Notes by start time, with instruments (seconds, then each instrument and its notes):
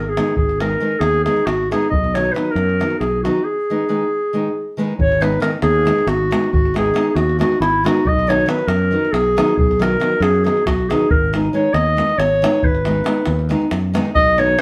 Already playing: fretless electric bass G#1
0.00 clarinet A#4
0.09 clarinet G#4
0.17 nylon-string guitar D#3 G#3 B3 D#4, davul high
0.28 davul high
0.36 fretless electric bass G#1, clarinet G#4, davul low
0.49 davul high
0.60 nylon-string guitar D#3 G#3 B3 D#4, clarinet A#4, davul high
0.71 davul high
0.80 nylon-string guitar D#3 G#3 B3 D#4
1.00 fretless electric bass D#2, clarinet G#4, davul high
1.13 davul high
1.24 nylon-string guitar D#3 G#3 B3 D#4, clarinet G#4, davul high
1.37 davul high
1.46 fretless electric bass G#1, clarinet F#4, davul high
1.71 nylon-string guitar D#3 G#3 B3 D#4, clarinet G#4, davul high
1.83 davul high
1.90 fretless electric bass B1, clarinet D#5, davul low
2.04 davul high
2.14 nylon-string guitar D#3 F#3 B3 D#4, clarinet C#5, davul high
2.25 davul high
2.32 nylon-string guitar D#3 F#3 B3 D#4, clarinet B4, davul high
2.51 clarinet A#4
2.55 fretless electric bass F#2, davul high
2.69 davul high
2.80 nylon-string guitar D#3 F#3 B3 D#4, davul high
2.90 davul high
2.99 fretless electric bass B1, clarinet G#4, davul high
3.23 nylon-string guitar D#3 F#3 B3 D#4, clarinet F#4, davul high
3.36 davul high
3.44 clarinet G#4
3.70 nylon-string guitar D#3 G#3 B3 D#4
3.89 nylon-string guitar D#3 G#3 B3 D#4
4.33 nylon-string guitar D#3 G#3 B3 D#4
4.77 nylon-string guitar D#3 G#3 B3 D#4
4.99 fretless electric bass G#1, clarinet C#5, davul low
5.12 davul high
5.21 nylon-string guitar D#3 G#3 B3 D#4, clarinet B4, davul high
5.32 davul high
5.40 nylon-string guitar D#3 G#3 B3 D#4, clarinet A#4, davul high
5.62 fretless electric bass D#2, clarinet G#4, davul high
5.75 davul high
5.85 nylon-string guitar D#3 G#3 B3 D#4, davul high
5.98 davul high
6.07 fretless electric bass G#1, clarinet F#4, davul high
6.31 nylon-string guitar D#3 G#3 B3 D#4, davul high
6.43 davul high
6.52 fretless electric bass G#1, clarinet F#4, davul low
6.65 davul high
6.74 nylon-string guitar D#3 G#3 B3 D#4, clarinet G#4, davul high
6.86 davul high
6.94 nylon-string guitar D#3 G#3 B3 D#4, davul high
7.09 clarinet G#4
7.15 fretless electric bass D#2, clarinet F#4, davul high
7.29 davul high
7.39 nylon-string guitar D#3 G#3 B3 D#4, clarinet F#4, davul high
7.52 davul high
7.60 fretless electric bass G#1, clarinet E4, davul high
7.84 nylon-string guitar D#3 G#3 B3 D#4, clarinet F#4, davul high
7.97 davul high
8.05 fretless electric bass B1, clarinet D#5, davul low
8.19 davul high
8.27 nylon-string guitar D#3 F#3 B3 D#4, clarinet C#5, davul high
8.40 davul high
8.46 nylon-string guitar D#3 F#3 B3 D#4, clarinet B4, davul high
8.67 fretless electric bass F#2, clarinet A#4, davul high
8.82 davul high
8.91 nylon-string guitar D#3 F#3 B3 D#4
9.05 davul high
9.12 fretless electric bass B1, clarinet G#4, davul high
9.37 nylon-string guitar D#3 F#3 B3 D#4, davul high
9.48 davul high
9.57 fretless electric bass B1, clarinet G#4, davul low
9.71 davul high
9.79 nylon-string guitar D#3 F#3 B3 D#4, clarinet A#4, davul high
10.00 nylon-string guitar D#3 F#3 B3 D#4, davul high
10.12 davul high
10.20 fretless electric bass F#2, clarinet G#4, davul high
10.34 davul high
10.44 nylon-string guitar D#3 F#3 B3 D#4, clarinet G#4, davul high
10.57 davul high
10.66 fretless electric bass B1, clarinet F#4, davul high, davul low
10.79 davul high
10.89 nylon-string guitar D#3 F#3 B3 D#4, clarinet G#4, davul high
11.01 davul high
11.10 fretless electric bass G#1, clarinet A#4, davul low
11.33 nylon-string guitar D#3 G#3 B3 D#4, davul high
11.45 davul high
11.53 nylon-string guitar D#3 G#3 B3 D#4, clarinet C#5
11.73 fretless electric bass D#2, clarinet D#5, davul high
11.86 davul high
11.97 nylon-string guitar D#3 G#3 B3 D#4, davul high
12.09 davul high
12.18 fretless electric bass G#1, clarinet C#5, davul high
12.42 nylon-string guitar D#3 G#3 B3 D#4, davul high
12.53 davul high
12.63 fretless electric bass G#1, clarinet B4, davul low
12.75 davul high
12.85 nylon-string guitar D#3 G#3 B3 D#4, davul high
12.96 davul high
13.04 nylon-string guitar D#3 G#3 B3 D#4, davul high
13.26 fretless electric bass D#2, davul high
13.39 davul high
13.49 nylon-string guitar D#3 G#3 B3 D#4, davul high
13.62 davul high
13.71 fretless electric bass F#2, davul high
13.94 nylon-string guitar D#3 G#3 B3 D#4, davul high
14.05 davul high
14.15 fretless electric bass B1, clarinet D#5, davul low
14.27 davul high
14.37 nylon-string guitar D#3 F#3 B3 D#4, clarinet C#5, davul high
14.48 davul high
14.58 nylon-string guitar D#3 F#3, davul high